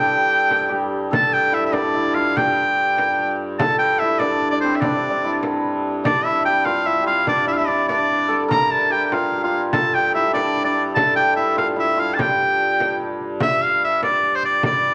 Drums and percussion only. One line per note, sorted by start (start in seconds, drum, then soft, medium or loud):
0.11 frame drum soft
0.51 frame drum medium
0.72 frame drum soft
1.13 frame drum medium
1.33 frame drum soft
1.73 frame drum medium
1.96 frame drum soft
2.37 frame drum medium
2.98 frame drum medium
3.18 frame drum soft
3.60 frame drum medium
3.79 frame drum soft
4.20 frame drum medium
4.41 frame drum soft
4.82 frame drum medium
5.03 frame drum soft
5.43 frame drum medium
5.64 frame drum soft
6.05 frame drum medium
6.26 frame drum soft
6.65 frame drum medium
6.87 frame drum soft
7.27 frame drum medium
7.69 frame drum soft
7.89 frame drum medium
8.11 frame drum soft
8.51 frame drum medium
8.72 frame drum soft
9.12 frame drum medium
9.32 frame drum soft
9.73 frame drum medium
9.94 frame drum soft
10.36 frame drum medium
10.56 frame drum soft
10.96 frame drum medium
11.17 frame drum soft
11.58 frame drum medium
11.79 frame drum soft
12.19 frame drum medium
12.40 frame drum soft
12.80 frame drum medium
13.01 frame drum soft
13.21 frame drum soft
13.40 frame drum medium
14.03 frame drum medium
14.23 frame drum soft
14.43 frame drum soft
14.63 frame drum medium